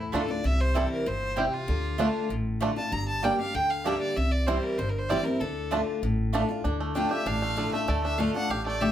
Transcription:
Already playing: steel-string acoustic guitar A2
0.00 fiddle E4
0.12 upright bass D2, steel-string acoustic guitar D3 A3 D4 F4, mandolin A3 F4 D5 A5, five-string banjo A3 D4, fiddle A4
0.28 steel-string acoustic guitar D4 F4, fiddle D5
0.44 upright bass C2, steel-string acoustic guitar C3, fiddle E5
0.61 fiddle C5
0.74 steel-string acoustic guitar E3 G3 C4 E4, five-string banjo G3 C4 E4, mandolin C4 E4 C5 G5, fiddle A4
0.92 fiddle A#4
1.06 upright bass G1, steel-string acoustic guitar A#2, fiddle C5
1.36 steel-string acoustic guitar C3, five-string banjo G3 C4 E4, mandolin C4 E4 C5 G5, fiddle G4
1.53 fiddle F4
1.68 upright bass D2, steel-string acoustic guitar D3
1.98 steel-string acoustic guitar D3 A3 D4 F4, mandolin A3 F4 D5 A5, five-string banjo A3 D4
2.29 upright bass A1, steel-string acoustic guitar A2
2.60 steel-string acoustic guitar D3 A3 D4 F4, mandolin A3 F4 D5 A5, five-string banjo A3 D4
2.76 steel-string acoustic guitar D4 F4, fiddle A5
2.92 upright bass G1, steel-string acoustic guitar G2, fiddle A#5
3.08 fiddle A5
3.22 steel-string acoustic guitar G3 A#3 D4 G4, five-string banjo G3 D4, mandolin A#3 G4 D5 G5, fiddle G5
3.39 steel-string acoustic guitar D4 G4, fiddle F5
3.54 upright bass D2, steel-string acoustic guitar D3, fiddle G5
3.70 fiddle F5
3.84 steel-string acoustic guitar G3 A#3 D4 G4, five-string banjo G3 D4, mandolin A#3 G4 D5 G5, fiddle E5
4.01 fiddle D5
4.16 upright bass C2, steel-string acoustic guitar C3, fiddle E5
4.32 fiddle D5
4.47 steel-string acoustic guitar E3 G3 C4 E4, five-string banjo G3 C4 E4, mandolin C4 E4 C5 G5, fiddle C5
4.63 fiddle A#4
4.78 upright bass G1, steel-string acoustic guitar G2, fiddle C5
4.89 fiddle A#4
4.98 fiddle C5
5.09 steel-string acoustic guitar E3 G3 C4 E4, five-string banjo G3 C4 E4, mandolin C4 E4 C5 G5, fiddle D5
5.24 steel-string acoustic guitar C4 E4, fiddle A#4
5.40 upright bass D2, steel-string acoustic guitar D3, fiddle A4
5.71 steel-string acoustic guitar D3 A3 D4 F4, mandolin A3 F4 D5 A5, five-string banjo A3 D4
6.02 upright bass A1, steel-string acoustic guitar A2
6.33 steel-string acoustic guitar D3 A3 D4 F4, mandolin A3 F4 D5 A5, five-string banjo A3 D4
6.49 steel-string acoustic guitar D4 F4
6.64 upright bass D2, steel-string acoustic guitar D3, five-string banjo D4
6.80 five-string banjo A3
6.95 steel-string acoustic guitar D3 A3 D4 F4, five-string banjo D4, fiddle G5
7.11 steel-string acoustic guitar D4 F4, five-string banjo G4, fiddle E5
7.26 upright bass A1, steel-string acoustic guitar A2, five-string banjo D4, fiddle F5
7.42 five-string banjo A3
7.56 steel-string acoustic guitar D3 A3 D4 F4, five-string banjo D3
7.72 five-string banjo A3, steel-string acoustic guitar D4 F4, fiddle E5
7.88 upright bass D2, steel-string acoustic guitar D3, five-string banjo A3, fiddle D5
8.03 five-string banjo D4, fiddle E5
8.18 steel-string acoustic guitar D3 A3 D4 F4, five-string banjo A3, fiddle F5
8.34 five-string banjo D4, steel-string acoustic guitar D4 F4, fiddle F#5
8.49 upright bass A1, steel-string acoustic guitar A2, five-string banjo G4, fiddle F5
8.66 five-string banjo A3, fiddle D5
8.81 steel-string acoustic guitar D3 A3 D4 F4, five-string banjo G4, fiddle E5

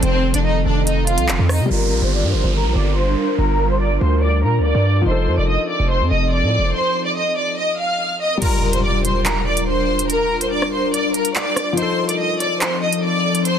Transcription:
Already playing: felt piano D#3 F3 A4, ambient pad D#3 F3 C4 A4
0.03 808-style bass F1, violin section C4 C5, closed hi-hat
0.34 808-style bass F1, violin section D4 D5, closed hi-hat
0.45 violin section D#4 D#5
0.65 808-style bass F1, violin section D4 D5
0.87 violin section D#4 D#5, closed hi-hat
1.07 violin section F4 F5, closed hi-hat
1.18 808-style bass C2, closed hi-hat
1.29 808-style bass F1, clap
1.39 808-style bass F2
1.49 violin section D#4 D#5, cross-stick, open hi-hat
1.60 808-style bass C3
1.66 felt piano G3
1.70 808-style bass G1, ambient pad G3 D4 F4 A#4, felt piano F4, violin section A#4 A#5, downlifter
1.75 felt piano A#4
1.91 808-style bass A#1
2.02 808-style bass G1, violin section C5 C6
2.13 violin section D5 D6
2.23 808-style bass G2
2.33 808-style bass G1, violin section C5 C6
2.44 808-style bass G1
2.54 violin section A#4 A#5
2.65 808-style bass A#1
2.75 808-style bass G1, violin section D5 D6
2.96 violin section C5 C6
3.38 808-style bass G1, violin section A#4 A#5
3.70 violin section C5 C6
3.80 violin section D5 D6
4.01 808-style bass D2, violin section C5 C6
4.22 violin section D5 D6
4.43 808-style bass A#2, violin section A#4 A#5
4.59 808-style bass D2
4.64 violin section D5 D6
4.75 808-style bass G2
5.02 felt piano F3
5.06 808-style bass F1, ambient pad F3 C4 D#4 A4, felt piano D#4, violin section C5 C6
5.11 felt piano A4
5.27 808-style bass F2
5.38 808-style bass F1, violin section D5 D6
5.48 violin section D#5 D#6
5.69 violin section D5 D6
5.80 808-style bass F1
5.90 violin section C5 C6
6.01 808-style bass F2
6.11 808-style bass F1, violin section D#5 D#6
6.32 violin section D5 D6
6.42 808-style bass A2
6.58 808-style bass F1
6.74 violin section C5 C6
7.05 violin section D5 D6
7.16 violin section D#5 D#6
7.37 violin section D5 D6
7.58 violin section D#5 D#6
7.79 violin section F5 F6
8.21 violin section D#5 D#6
8.37 felt piano G3, violin section A#4
8.42 ambient pad G3 D4 F4 A#4, felt piano F4, violin section A#5, closed hi-hat, crash, impact
8.47 felt piano A#4
8.73 violin section C5 C6, closed hi-hat
8.84 violin section D5 D6
9.05 violin section C5 C6, closed hi-hat
9.26 violin section A#4 A#5, clap, closed hi-hat
9.47 violin section D5 D6
9.57 closed hi-hat
9.67 violin section C5 C6
9.99 closed hi-hat
10.09 violin section A#4 A#5, closed hi-hat
10.41 violin section C5 C6, closed hi-hat
10.51 violin section D5 D6
10.62 cross-stick
10.73 violin section C5 C6
10.93 violin section D5 D6, closed hi-hat
11.14 violin section A#4 A#5, closed hi-hat
11.25 closed hi-hat
11.35 violin section D5 D6, clap
11.56 cross-stick, closed hi-hat
11.73 felt piano F3
11.77 ambient pad F3 C4 D#4 A4, felt piano D#4, violin section C5 C6, closed hi-hat
11.82 felt piano A4
12.09 violin section D5 D6, closed hi-hat
12.19 violin section D#5 D#6
12.40 violin section D5 D6, closed hi-hat
12.61 violin section C5 C6, clap, closed hi-hat
12.82 violin section D#5 D#6
12.93 closed hi-hat
13.03 violin section D5 D6
13.35 closed hi-hat
13.45 violin section C5 C6, closed hi-hat

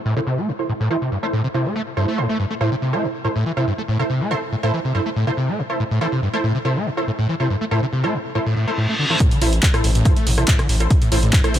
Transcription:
0.05 acid bass A2
0.16 acid bass C3, synth stab E4 A4 C5
0.27 acid bass C3
0.38 acid bass A3
0.48 acid bass A2
0.59 synth stab E4 A4 C5
0.69 acid bass A2
0.80 acid bass A2
0.90 acid bass E3, synth stab E4 A4 C5
1.02 acid bass C3
1.12 acid bass G2
1.23 acid bass A3, synth stab E4 A4 C5
1.33 acid bass A2
1.44 acid bass C3
1.54 acid bass C3, synth stab E4 A4 C5
1.66 acid bass A3
1.76 acid bass A3
1.97 acid bass G2, synth stab E4 A4 C5
2.08 acid bass A3
2.18 acid bass A2, synth stab E4 A4 C5
2.29 acid bass A3
2.39 acid bass G2
2.51 acid bass A3
2.61 acid bass A2, synth stab E4 A4 C5
2.72 acid bass C3
2.82 acid bass C3
2.93 acid bass A3, synth stab E4 A4 C5
3.03 acid bass A2
3.25 acid bass A2, synth stab E4 A4 C5
3.36 acid bass A2
3.46 acid bass E3
3.57 acid bass C3, synth stab E4 A4 C5
3.67 acid bass G2
3.78 acid bass A3
3.88 acid bass A2
3.99 acid bass C3, synth stab E4 A4 C5
4.10 acid bass C3
4.21 acid bass A3
4.31 acid bass A2, synth stab E4 A4 C5
4.52 acid bass A2
4.63 acid bass A2, synth stab E4 A4 C5
4.74 acid bass E3
4.85 acid bass C3
4.95 acid bass G2, synth stab E4 A4 C5
5.06 acid bass A3
5.16 acid bass A2
5.27 acid bass C3, synth stab E4 A4 C5
5.37 acid bass C3
5.48 acid bass A3
5.59 acid bass A2
5.70 synth stab E4 A4 C5
5.80 acid bass A2
5.91 acid bass A2
6.01 acid bass E3, synth stab E4 A4 C5
6.12 acid bass C3
6.22 acid bass G2
6.33 acid bass A3, synth stab E4 A4 C5
6.44 acid bass A2
6.55 acid bass C3
6.65 acid bass C3, synth stab E4 A4 C5
6.76 acid bass A3
6.86 acid bass A2
6.97 synth stab E4 A4 C5
7.08 acid bass A2
7.19 acid bass A2
7.29 acid bass E3
7.40 acid bass C3, synth stab E4 A4 C5
7.50 acid bass G2
7.61 acid bass A3
7.71 acid bass A2, synth stab E4 A4 C5
7.82 acid bass C3
7.93 acid bass C3
8.04 acid bass A3, synth stab E4 A4 C5
8.14 acid bass A2
8.35 acid bass A2, synth stab E4 A4 C5, reverse cymbal
8.46 acid bass A2
8.56 acid bass A2
8.68 acid bass A3, synth stab E4 A4 C5
8.78 acid bass A2
8.89 acid bass A3
8.99 acid bass D3
9.10 acid bass E3, synth stab E4 A4 C5
9.20 acid bass A2, kick, closed hi-hat
9.31 acid bass D3, closed hi-hat
9.42 acid bass A1, analog synth bass A1, synth stab E4 A4 C5, open hi-hat
9.53 closed hi-hat
9.63 acid bass A2, kick, clap, closed hi-hat
9.74 acid bass A2, synth stab E4 A4 C5, cross-stick, closed hi-hat
9.84 analog synth bass A1, acid bass A2, open hi-hat
9.95 acid bass A2, closed hi-hat
10.05 acid bass G2, synth stab E4 A4 C5, kick, closed hi-hat
10.16 acid bass A3, closed hi-hat
10.27 analog synth bass A1, acid bass G2, open hi-hat
10.38 acid bass C3, synth stab E4 A4 C5, cross-stick, closed hi-hat
10.48 acid bass A2, kick, clap, closed hi-hat
10.59 acid bass D3, cross-stick, closed hi-hat
10.69 acid bass A1, analog synth bass A1, open hi-hat
10.80 synth stab E4 A4 C5, closed hi-hat
10.90 acid bass A2, kick, closed hi-hat
11.02 acid bass A2, closed hi-hat
11.12 analog synth bass A1, acid bass A2, synth stab E4 A4 C5, open hi-hat
11.23 acid bass A2, closed hi-hat
11.33 acid bass G2, kick, clap, closed hi-hat
11.44 acid bass A3, synth stab E4 A4 C5, cross-stick, closed hi-hat
11.54 analog synth bass A1, acid bass G2, open hi-hat

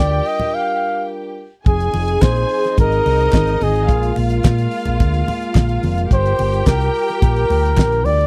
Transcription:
Already playing: fingered electric bass D2, french horn section G3 D4 F4 A#4, string section G4 G5, flugelhorn D5
0.25 flugelhorn D#5, open hi-hat
0.40 low conga
0.54 flugelhorn F5
1.65 fingered electric bass F1, french horn section F3 C4 D#4 G#4, string section G#4 G#5, flugelhorn G#4, kick, closed hi-hat, muted conga
1.80 closed hi-hat
1.94 fingered electric bass F1, open hi-hat, muted conga
2.08 closed hi-hat
2.21 fingered electric bass A#1, flugelhorn C5, kick, snare, clap, closed hi-hat, high conga
2.36 closed hi-hat
2.49 open hi-hat
2.64 snare, closed hi-hat
2.77 fingered electric bass G#1, string section D#4 D#5, flugelhorn A#4, kick, closed hi-hat, muted conga
2.92 closed hi-hat
3.06 fingered electric bass C2, open hi-hat, muted conga
3.20 closed hi-hat
3.32 fingered electric bass G#1, kick, snare, clap, closed hi-hat, high conga
3.47 closed hi-hat
3.61 fingered electric bass G#1, flugelhorn G#4, open hi-hat, high conga
3.76 closed hi-hat
3.88 fingered electric bass A#1, french horn section G#3 A#3, string section F4 F5, kick, closed hi-hat
4.03 closed hi-hat
4.16 fingered electric bass A#1, open hi-hat, muted conga
4.30 closed hi-hat
4.43 fingered electric bass A#2, kick, snare, clap, closed hi-hat, high conga
4.58 closed hi-hat
4.71 open hi-hat
4.85 fingered electric bass A#1, closed hi-hat, low conga
5.00 fingered electric bass D2, kick, closed hi-hat, muted conga
5.14 closed hi-hat
5.28 open hi-hat, muted conga, low conga
5.42 closed hi-hat
5.55 fingered electric bass A#1, kick, snare, clap, closed hi-hat, high conga
5.69 closed hi-hat
5.83 fingered electric bass F1, open hi-hat, high conga
5.98 closed hi-hat
6.10 fingered electric bass G1, french horn section G3 F4 A#4, string section G4 G5, kick, closed hi-hat, muted conga
6.14 flugelhorn C5
6.26 closed hi-hat
6.39 fingered electric bass G1, open hi-hat, muted conga
6.53 closed hi-hat
6.66 fingered electric bass C2, flugelhorn A#4, kick, snare, clap, closed hi-hat, high conga
6.81 closed hi-hat
6.94 open hi-hat
7.08 snare, closed hi-hat
7.22 fingered electric bass A#1, flugelhorn A#4, kick, closed hi-hat, muted conga
7.36 closed hi-hat
7.50 fingered electric bass D2, open hi-hat, muted conga
7.65 closed hi-hat
7.77 fingered electric bass A#1, kick, snare, clap, closed hi-hat, high conga
7.92 closed hi-hat
8.05 fingered electric bass D2, flugelhorn D5, open hi-hat, high conga
8.21 closed hi-hat

